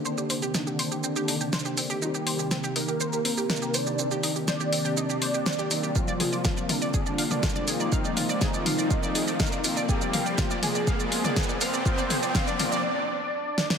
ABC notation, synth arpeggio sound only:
X:1
M:4/4
L:1/16
Q:1/4=122
K:Fdor
V:1 name="Synth arpeggio sound"
c G C G E G c G C G E G c G C G | E G c G C G E G c G C G E G c G | C G E G c G C G E G c G C G E G | F d A d f d F d A d f d F d A d |
f d F d A d f d F d A d f d F d | A d f d F d A d f d F d A d f d | F d A d f d F d z8 |]